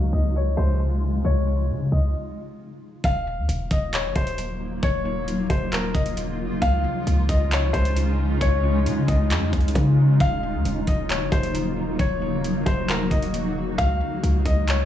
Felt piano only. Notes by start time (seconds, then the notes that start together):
0.13 D#5
0.36 C#5
0.57 C5
1.24 C#5
1.92 D#5
3.05 F5
3.72 D#5
3.93 C#5
4.16 C5
4.83 C#5
5.50 C5
5.73 A#4
5.94 D#5
6.62 F5
7.30 D#5
7.52 C#5
7.73 C5
8.41 C#5
9.08 D#5
10.21 F5
10.87 D#5
11.09 C#5
11.32 C5
11.99 C#5
12.66 C5
12.89 A#4
13.11 D#5
13.78 F5
14.46 D#5
14.69 C#5